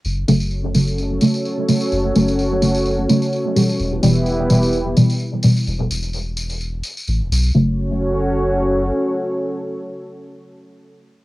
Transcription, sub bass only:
X:1
M:4/4
L:1/16
Q:"Swing 16ths" 1/4=128
K:F#phr
V:1 name="Sub bass" clef=bass
F,,,2 F,,,8 z6 | F,,,2 F,,,8 z6 | E,,,2 E,,,8 z6 | E,,,2 E,,,8 z2 A,,, D,,, B,,,2 |
z16 | z16 |]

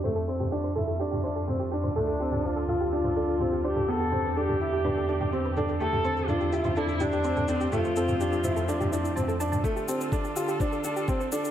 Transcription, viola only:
X:1
M:4/4
L:1/8
Q:1/4=125
K:Ddor
V:1 name="Viola"
z8 | D2 F2 F3 G | A2 G4- G z | A2 F2 E D2 C |
F6 z2 | z8 |]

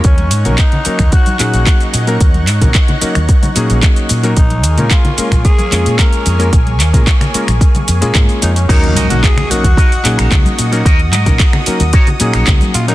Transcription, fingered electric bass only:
X:1
M:4/4
L:1/16
Q:1/4=111
K:Ebm
V:1 name="Fingered electric bass" clef=bass
E,,2 A,, B,,, z3 E,, z2 B,, B,,, z2 B,,2 | E,,2 A,, B,,, z3 E,, z2 B,, B,,, z2 B,,2 | B,,,2 E,, B,, z3 B,,, z2 F,, B,, z2 F,,2 | B,,,2 E,, B,, z3 B,,, z2 F,, B,, A,, z F,,2 |
E,,2 A,, B,,, z3 E,, z2 B,, B,,, D,, z B,,2 | E,,2 A,, B,,, z3 E,, z2 B,, B,,, D,, z B,,2 |]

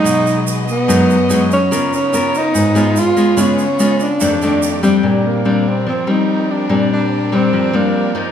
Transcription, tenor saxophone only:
X:1
M:4/4
L:1/8
Q:1/4=144
K:C#mix
V:1 name="Tenor saxophone"
D2 z B,4 C- | C C2 D3 E2 | C3 =D4 z | [K:Bb] G, B,2 C C E2 D- |
D D2 C2 B,2 z |]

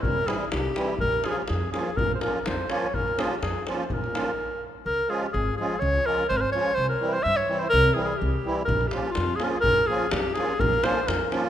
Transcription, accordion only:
X:1
M:2/4
L:1/8
Q:"Swing 16ths" 1/4=125
K:none
V:1 name="Accordion"
z [E,G,CE] z [E,G,CE] | z [F,_B,_DF] z [F,B,DF] | z [F,_B,_DF] z [F,B,DF] | z [F,_B,_DF] z [F,B,DF] |
z [F,_B,_DF] z2 | z [F,_A,_DF] z [F,A,DF] | z [F,_A,_DF] z [F,A,DF] | z [E,G,CE] z [E,G,CE] |
z [E,G,CE] z [E,G,CE] | z [F,_B,_DF] z [F,B,DF] | z [F,_B,_DF] z [F,B,DF] | z [F,_B,_DF] z [F,B,DF] |]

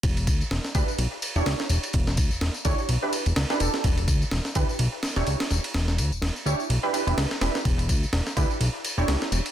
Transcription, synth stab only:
X:1
M:4/4
L:1/16
Q:"Swing 16ths" 1/4=126
K:Edor
V:1 name="Synth stab"
z6 [DEGB] z4 [DEGc]4- [DEGc]- | [DEGc]6 [DEGc] z2 [DEGB] z3 [DEGB] [DEGA]2 | z6 [DEGB] z4 [DEGc]4- [DEGc]- | [DEGc]6 [DEGc] z2 [DEGB] [DEGB] [DEGB] z2 [DEGB] z |
z6 [DEGB] z4 [DEGc]4- [DEGc] |]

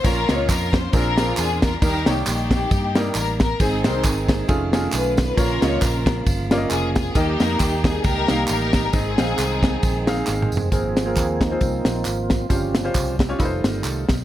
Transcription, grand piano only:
X:1
M:4/4
L:1/16
Q:"Swing" 1/4=135
K:Ab
V:1 name="Grand piano"
[B,DFBd] z [B,CDFBe]4- [B,CDFBe] z [C=DFAB]2 [CDFAB]4 z2 | [G,B,EGB] z [G,B,EGd]4- [G,B,EGd] z3 [G,B,EGB]4 z2 | [A,CEAc] z [A,CEAB]4- [A,CEAB] z [=A,^CEF^G]2 [A,CEFG]4 z2 | [B,DFBd] z [B,DFBe]4- [B,DFBe] z3 [B,DFB=de]4 z2 |
[B,EGBe] z [B,EGBe]4- [B,EGBe] z3 [B,EGBf]4 z2 | [CEAce] z [CEAcf]4- [CEAcf] z3 [CEAcf]4 z2 | [CFAB]2 z [CFAB]3 z [CFAc]4- [CFAc] z4 | [DFGc]2 z [DFGc]3 z [DFGd] [EF=A_c=c]6 z2 |]
V:2 name="Grand piano" clef=bass
B,,6 z2 B,,6 z2 | E,6 z8 z2 | A,,6 z8 z2 | B,,6 z8 z2 |
E,6 z8 z2 | A,,6 z8 z2 | A,,6 z8 z2 | G,,6 z8 z2 |]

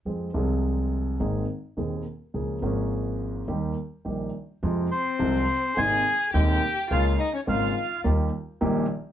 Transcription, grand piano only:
X:1
M:4/4
L:1/8
Q:1/4=105
K:Fm
V:1 name="Grand piano" clef=bass
[F,,F,A,CA] [C,,C,F,A,CA]3 [A,,,A,,E,B,CA] z [E,,,E,,E,B,CA] z | [D,,D,F,B,DA] [A,,,A,,F,B,DA]3 [E,,E,G,B,G] z [B,,,B,,E,G,B,G] z | [F,,C,F,A,F] z [C,,C,F,A,F] z [A,,,A,,C,A,B,E] z [E,,,E,,C,A,B,E] z | [D,,D,A,B,F] z [A,,,A,,D,A,B,F] z [E,,E,G,B,G] z [B,,,B,,E,G,B,G] z |]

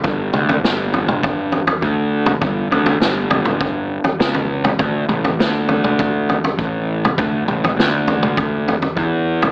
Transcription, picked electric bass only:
X:1
M:4/4
L:1/8
Q:1/4=101
K:Glyd
V:1 name="Picked electric bass" clef=bass
G,,, D,, G,,,4 D,,2 | G,,, D,, G,,,4 C,,2 | D,, A,,, D,,4 A,,,2 | D,, A,,, D,,4 E,,2 |]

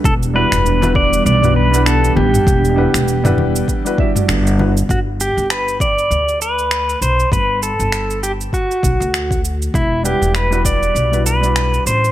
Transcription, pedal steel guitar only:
X:1
M:4/4
L:1/8
Q:"Swing 16ths" 1/4=99
K:G
V:1 name="Pedal steel guitar"
A B2 d d B A G- | G6 z2 | F G B d2 B2 c | B A2 G F3 z |
E G B d2 B2 c |]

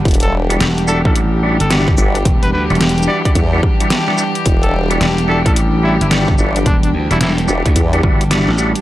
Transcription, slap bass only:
X:1
M:4/4
L:1/16
Q:"Swing 16ths" 1/4=109
K:Em
V:1 name="Slap bass" clef=bass
z4 E,,,3 A,,,4 G,,,3 z2 | E,,,2 D,, E,,,3 z8 z2 | z4 E,,,3 A,,,4 G,,,3 z2 | E,,,2 D,, E,,,3 z D,, z2 G,,,3 A,,,2 z |]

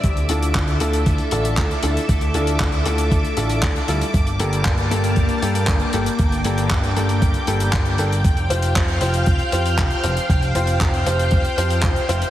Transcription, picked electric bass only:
X:1
M:4/4
L:1/8
Q:1/4=117
K:Dm
V:1 name="Picked electric bass" clef=bass
D,, D,, D,, D,, D,, A,,, D,, D,, | D,, D,, D,, D,, D,, A,,, D,, D,, | G,,, G,,, G,,, G,,, G,,, G,, G,,, G,,, | G,,, G,,, G,,, G,,, G,,, G,,, G,,, G,,, |
F,,, F,,, F,,, F,,, F,,, F,, F,,, F,,, | F,,, F,,, F,,, F,,, F,,, F,, F,,, F,,, |]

